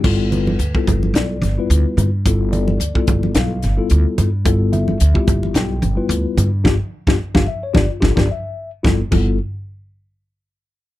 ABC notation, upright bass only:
X:1
M:4/4
L:1/16
Q:"Swing 16ths" 1/4=109
K:Gmix
V:1 name="Upright bass" clef=bass
G,,,4 D,, z G,,,2 B,,,2 G,,, z D,, z G,,2 | G,,,4 D,, z G,,,2 B,,,2 G,,, z D,, z G,,2 | G,,,4 D,, z G,,,2 B,,,2 G,,, z D,, z G,,2 | G,,, z2 G,,, z G,,, z2 G,,, z G,,, G,,, z4 |
G,,, z G,,,2 z12 |]